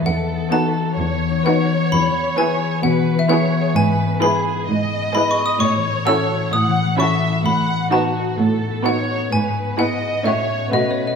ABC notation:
X:1
M:4/4
L:1/16
Q:1/4=129
K:E
V:1 name="Xylophone"
f4 a6 z2 f4 | b4 g4 f3 e f4 | g4 b6 z2 (3b2 c'2 d'2 | c'4 e'4 d'4 c'4 |
b4 a6 z2 f4 | g4 f4 e4 (3d2 c2 d2 |]
V:2 name="Violin section"
A8 c8- | c8 B4 c4 | B4 G4 d8 | c8 f4 e4 |
f4 F4 A4 c4 | B4 d4 c4 B4 |]
V:3 name="Violin section"
z4 [FB]4 z4 [FB]4 | z4 [GB]4 z4 [GB]4 | z4 [GB]4 z4 [GB]4 | z4 [FA]4 z4 [FA]4 |
z4 [FB]4 z4 [FB]4 | z4 [GB]4 [Fc]4 [FB]4 |]
V:4 name="Harp"
(3[E,B,B]2 B,2 D2 (3F2 B2 F2 (3E,2 B,2 D2 (3F2 B2 F2 | (3E,2 B,2 E2 (3G2 B2 G2 (3E,2 B,2 E2 (3G2 B2 G2 | (3G,,2 G,2 B,2 (3E2 G2 E2 (3G,,2 G,2 B,2 (3E2 G2 E2 | (3A,,2 E,2 A,2 (3E2 F2 E2 (3A,,2 E,2 A,2 (3E2 F2 E2 |
(3A,,2 A,2 B,2 (3D2 F2 D2 (3A,,2 A,2 B,2 (3D2 F2 D2 | (3G,,2 G,2 B,2 (3E2 B2 E2 (3A,,2 C2 [FA]2 (3B,,2 B,2 [FA]2 |]
V:5 name="Viola section"
z4 [B,D]4 z4 [B,D]4 | z4 [B,E]4 z4 [B,E]4 | z4 [G,E]4 z4 [G,E]4 | z4 [CE]4 z4 [CE]4 |
z4 [B,D]4 z4 [B,D]4 | z4 [B,E]4 [A,C]4 [A,F]4 |]
V:6 name="Cello section" clef=bass
E,,4 z4 E,,4 z4 | E,,4 z4 B,,4 z4 | G,,4 z4 G,,4 z4 | A,,4 z4 A,,4 z4 |
A,,4 z4 A,,4 z4 | G,,4 z4 A,,4 B,,4 |]